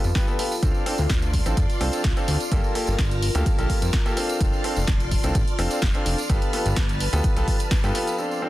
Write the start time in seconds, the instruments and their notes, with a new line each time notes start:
Already playing: ambient pad F4 B4 A5
0.04 analog synth bass F2, tambourine
0.15 grand piano B3 F4 G4 B4, kick, snare, tambourine
0.28 grand piano B3 F4 G4 A4, tambourine
0.39 grand piano B3 F4 G4 A4, open hi-hat
0.52 tambourine
0.63 analog synth bass D2, grand piano C4 D4 F4 A4, string machine D5 C6 F6, kick, closed hi-hat, tambourine
0.74 tambourine
0.86 grand piano C4 D4 F4 A4, open hi-hat
0.98 analog synth bass D2, tambourine
1.10 analog synth bass D2, ambient pad D5, kick, snare, closed hi-hat, tambourine
1.22 closed hi-hat, tambourine
1.30 ambient pad C6, kick, open hi-hat
1.46 analog synth bass A1, grand piano C4 D4 F4 A4, closed hi-hat, tambourine
1.57 analog synth bass F2, kick, closed hi-hat, tambourine
1.70 closed hi-hat, tambourine
1.81 analog synth bass C2, grand piano C4 D4 F4 A4, open hi-hat
1.93 closed hi-hat, tambourine
2.04 analog synth bass C2, kick, snare, closed hi-hat, tambourine
2.17 grand piano C4 D4 F4 A4, closed hi-hat, tambourine
2.28 analog synth bass D2, open hi-hat
2.40 closed hi-hat, tambourine
2.51 analog synth bass G1, grand piano A#3 F4 G4 A4, string machine A#4 A5, kick, closed hi-hat, tambourine
2.64 tambourine
2.75 grand piano A#3 F4 G4 A4, open hi-hat
2.87 analog synth bass G1, tambourine
2.93 ambient pad A#4
2.99 analog synth bass G1, kick, snare, closed hi-hat, tambourine
3.09 ambient pad A5, closed hi-hat, tambourine
3.22 open hi-hat
3.35 analog synth bass D2, grand piano A#3 F4 G4 A4, closed hi-hat, tambourine
3.46 kick, closed hi-hat, tambourine
3.59 analog synth bass A#1, grand piano A#3 F4 G4 A4, closed hi-hat, tambourine
3.70 kick, open hi-hat
3.82 analog synth bass F2, closed hi-hat, tambourine
3.93 kick, snare, closed hi-hat
4.06 grand piano A#3 F4 G4 A4, closed hi-hat, tambourine
4.17 grand piano C4 D4 F4 A4, string machine D5 C6, open hi-hat
4.29 closed hi-hat, tambourine
4.41 analog synth bass F1, grand piano C4 D4 F4 A4, kick, closed hi-hat, tambourine
4.53 tambourine
4.64 grand piano C4 D4 F4 A4, open hi-hat
4.76 analog synth bass F1, tambourine
4.87 analog synth bass F1, ambient pad D5, kick, snare, closed hi-hat, tambourine
5.00 closed hi-hat, tambourine
5.11 ambient pad C6, kick, open hi-hat
5.23 analog synth bass C2, grand piano C4 D4 F4 A4, closed hi-hat, tambourine
5.35 analog synth bass A1, kick, closed hi-hat, tambourine
5.48 closed hi-hat, tambourine
5.59 analog synth bass F1, grand piano C4 D4 F4 A4, open hi-hat
5.71 closed hi-hat, tambourine
5.82 analog synth bass F1, kick, snare, closed hi-hat, tambourine
5.94 grand piano C4 D4 F4 A4, closed hi-hat, tambourine
6.06 analog synth bass F1, open hi-hat
6.18 closed hi-hat, tambourine
6.29 analog synth bass G1, grand piano B3 F4 G4 A4, string machine B4 A5, kick, closed hi-hat
6.42 closed hi-hat, tambourine
6.53 grand piano B3 F4 G4 A4, open hi-hat
6.66 analog synth bass G1, closed hi-hat, tambourine
6.70 ambient pad A5
6.76 analog synth bass G1, kick, snare, closed hi-hat
6.89 closed hi-hat, tambourine
7.00 open hi-hat
7.12 analog synth bass D2, grand piano B3 F4 G4 A4, ambient pad B4, closed hi-hat, tambourine
7.24 kick, closed hi-hat
7.36 analog synth bass B1, grand piano B3 F4 G4 A4, closed hi-hat, tambourine
7.48 kick, open hi-hat
7.59 closed hi-hat, tambourine
7.71 kick, snare, closed hi-hat, tambourine
7.84 analog synth bass G2, grand piano B3 F4 G4 A4, closed hi-hat, tambourine
7.95 grand piano B3 F4 G4 A4, open hi-hat
8.07 closed hi-hat, tambourine
8.18 grand piano C4 D4 F4 A4, string machine D5 C6 F6, tambourine
8.31 tambourine
8.42 grand piano C4 D4 F4 A4